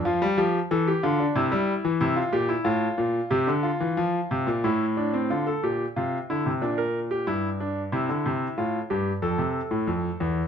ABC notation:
X:1
M:4/4
L:1/16
Q:1/4=92
K:Fmix
V:1 name="Grand piano"
F2 G2 A G F D =E4 E F G E | F4 G2 F6 =E2 D C | F A G2 F2 =E2 D B2 G E2 D2 | =E4 F2 G2 A8 |]
V:2 name="Grand piano" clef=bass
F, G, F,2 =E,2 D,2 C, G,2 E, C,2 B,,2 | A,,2 B,,2 C, D,2 =E, F,2 C, B,, A,,4 | D,2 B,,2 C,2 D, C, B,,4 G,,4 | C, D, C,2 A,,2 G,,2 F,, C,2 A,, F,,2 =E,,2 |]